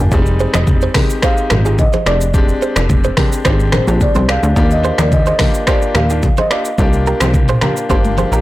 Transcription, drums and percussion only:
0.12 kick loud
0.12 shaker medium
0.26 shaker medium
0.40 shaker medium
0.54 finger snap medium
0.54 cross-stick loud
0.54 high conga medium
0.54 shaker medium
0.67 kick medium
0.67 low conga medium
0.67 shaker medium
0.81 shaker medium
0.94 finger snap medium
0.94 kick loud
0.94 cross-stick loud
0.94 open hi-hat medium
0.94 high conga medium
0.94 low conga medium
0.94 shaker medium
1.10 shaker loud
1.22 finger snap medium
1.22 kick loud
1.22 cross-stick loud
1.22 shaker medium
1.37 shaker medium
1.50 finger snap medium
1.50 cross-stick medium
1.50 mid tom medium
1.50 high conga medium
1.50 shaker medium
1.65 shaker medium
1.78 kick loud
1.78 high conga medium
1.78 low conga medium
1.78 shaker medium
1.93 high conga medium
1.93 shaker soft
2.06 finger snap medium
2.06 cross-stick loud
2.06 shaker medium
2.21 shaker loud
2.34 kick loud
2.34 shaker medium
2.49 shaker medium
2.62 shaker medium
2.76 finger snap medium
2.76 cross-stick loud
2.76 high conga medium
2.76 shaker loud
2.89 kick medium
2.89 low conga medium
2.89 shaker medium
3.04 shaker medium
3.17 finger snap medium
3.17 kick loud
3.17 cross-stick loud
3.17 open hi-hat medium
3.17 high conga medium
3.17 low conga medium
3.17 shaker medium
3.32 shaker loud
3.45 finger snap medium
3.45 kick loud
3.45 cross-stick loud
3.45 shaker medium
3.60 shaker medium
3.72 finger snap medium
3.72 cross-stick loud
3.72 mid tom medium
3.72 high conga medium
3.72 shaker soft
3.88 shaker medium
4.00 kick loud
4.00 high conga medium
4.00 low conga medium
4.00 shaker medium
4.15 high conga medium
4.15 shaker soft
4.29 finger snap medium
4.29 cross-stick loud
4.29 shaker medium
4.43 shaker loud
4.56 kick loud
4.56 shaker medium
4.71 shaker medium
4.84 shaker medium
4.98 finger snap medium
4.98 cross-stick loud
4.98 high conga medium
4.98 shaker loud
5.12 kick medium
5.12 low conga medium
5.12 shaker medium
5.26 shaker medium
5.39 finger snap medium
5.39 kick loud
5.39 cross-stick loud
5.39 open hi-hat medium
5.39 high conga medium
5.39 low conga medium
5.39 shaker medium
5.54 shaker loud
5.67 finger snap medium
5.67 kick loud
5.67 cross-stick loud
5.67 shaker medium
5.82 shaker medium
5.95 finger snap medium
5.95 cross-stick loud
5.95 mid tom medium
5.95 high conga medium
5.95 shaker medium
6.10 shaker loud
6.23 kick loud
6.23 high conga medium
6.23 low conga medium
6.23 shaker medium
6.37 high conga medium
6.37 shaker soft
6.51 finger snap medium
6.51 cross-stick loud
6.51 shaker soft
6.65 shaker loud
6.78 kick loud
6.78 shaker medium
6.93 shaker medium
7.07 shaker medium
7.20 finger snap medium
7.20 cross-stick loud
7.20 high conga medium
7.20 shaker medium
7.34 kick medium
7.34 low conga medium
7.34 shaker medium
7.48 mid tom loud
7.48 shaker medium
7.61 finger snap medium
7.61 cross-stick loud
7.61 high conga medium
7.61 low conga medium
7.61 shaker medium
7.77 shaker loud
7.90 kick loud
7.90 high tom medium
7.90 shaker medium
8.04 high tom medium
8.04 shaker medium
8.18 high conga medium
8.18 shaker soft
8.33 shaker medium

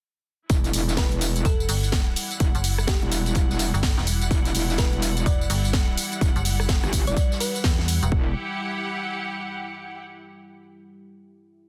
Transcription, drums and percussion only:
0.50 kick loud
0.50 closed hi-hat medium
0.50 tambourine soft
0.64 closed hi-hat medium
0.64 closed hi-hat soft
0.64 tambourine soft
0.73 closed hi-hat medium
0.73 open hi-hat loud
0.73 tambourine medium
0.89 snare soft
0.89 tambourine soft
0.97 kick loud
0.97 snare loud
0.97 closed hi-hat medium
0.97 tambourine soft
1.12 closed hi-hat soft
1.21 closed hi-hat medium
1.21 open hi-hat loud
1.21 tambourine medium
1.36 closed hi-hat medium
1.36 tambourine soft
1.45 kick loud
1.45 closed hi-hat medium
1.45 tambourine soft
1.60 tambourine soft
1.69 open hi-hat medium
1.69 open hi-hat loud
1.69 tambourine medium
1.83 closed hi-hat soft
1.83 tambourine soft
1.92 kick loud
1.92 snare loud
1.92 closed hi-hat medium
1.92 tambourine soft
2.16 closed hi-hat medium
2.16 open hi-hat loud
2.16 tambourine medium
2.31 closed hi-hat soft
2.31 tambourine soft
2.40 kick loud
2.40 closed hi-hat medium
2.40 tambourine soft
2.55 closed hi-hat medium
2.55 tambourine soft
2.64 closed hi-hat medium
2.64 open hi-hat loud
2.64 tambourine medium
2.78 cross-stick medium
2.78 tambourine soft
2.87 kick loud
2.87 snare loud
2.87 closed hi-hat medium
2.87 tambourine soft
3.02 closed hi-hat soft
3.12 closed hi-hat medium
3.12 open hi-hat loud
3.12 tambourine medium
3.26 closed hi-hat soft
3.26 closed hi-hat medium
3.26 tambourine soft
3.35 kick loud
3.35 closed hi-hat medium
3.35 tambourine soft
3.50 snare medium
3.50 tambourine soft
3.59 snare medium
3.59 closed hi-hat medium
3.59 open hi-hat loud
3.59 tambourine medium
3.74 closed hi-hat soft
3.74 tambourine soft
3.83 kick loud
3.83 snare loud
3.83 closed hi-hat medium
3.83 open hi-hat medium
3.83 tambourine soft
3.97 snare soft
4.07 closed hi-hat medium
4.07 open hi-hat loud
4.07 tambourine medium
4.22 closed hi-hat soft
4.22 tambourine soft
4.31 kick loud
4.31 closed hi-hat medium
4.31 tambourine soft
4.45 closed hi-hat medium
4.45 tambourine soft
4.55 closed hi-hat medium
4.55 open hi-hat loud
4.55 tambourine medium
4.69 snare soft
4.69 tambourine soft
4.78 kick loud
4.78 snare loud
4.78 closed hi-hat medium
4.78 tambourine soft
4.93 closed hi-hat soft
5.02 closed hi-hat medium
5.02 open hi-hat loud
5.02 tambourine medium
5.17 closed hi-hat medium
5.17 tambourine soft
5.26 kick loud
5.26 closed hi-hat medium
5.26 tambourine soft
5.41 tambourine soft
5.50 open hi-hat loud
5.50 open hi-hat medium
5.50 tambourine medium
5.64 closed hi-hat soft
5.64 tambourine soft
5.73 kick loud
5.73 snare loud
5.73 closed hi-hat medium
5.73 tambourine soft
5.97 closed hi-hat medium
5.97 open hi-hat loud
5.97 tambourine medium
6.12 closed hi-hat soft
6.12 tambourine soft
6.21 kick loud
6.21 closed hi-hat medium
6.21 tambourine soft
6.36 closed hi-hat medium
6.36 tambourine soft
6.45 closed hi-hat medium
6.45 open hi-hat loud
6.45 tambourine medium
6.60 cross-stick medium
6.60 tambourine soft
6.69 kick loud
6.69 snare loud
6.69 closed hi-hat medium
6.69 tambourine soft
6.84 cross-stick medium
6.84 closed hi-hat soft
6.84 tambourine soft
6.92 kick medium
6.92 closed hi-hat medium
6.92 open hi-hat loud
6.92 tambourine medium
7.07 closed hi-hat soft
7.07 closed hi-hat medium
7.07 tambourine soft
7.17 kick loud
7.17 closed hi-hat medium
7.17 tambourine soft
7.32 snare soft
7.32 tambourine soft
7.40 snare medium
7.40 closed hi-hat medium
7.40 open hi-hat loud
7.40 tambourine medium
7.55 closed hi-hat soft
7.55 tambourine soft
7.64 kick loud
7.64 snare loud
7.64 closed hi-hat medium
7.64 open hi-hat medium
7.64 tambourine soft
7.79 snare soft
7.88 closed hi-hat medium
7.88 open hi-hat loud
7.88 tambourine medium
8.03 closed hi-hat soft
8.03 tambourine soft
8.12 kick loud

